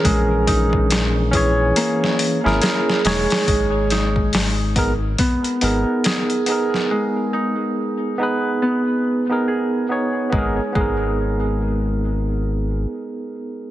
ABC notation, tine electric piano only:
X:1
M:4/4
L:1/16
Q:"Swing 16ths" 1/4=70
K:G#m
V:1 name="Tine electric piano"
[E,CGA]6 [E,CGc]4- [E,CGc] [CEGA]3 [DGc]2- | [DGc]2 z4 [B,DGA] z3 [B,DGA]4 [B,DGA]2- | [B,DGA]6 [B,DGB]4- [B,DGB] [B,DGA]3 [B,DGc]2 | [B,DGA] z [B,DGA]12- [B,DGA]2 |]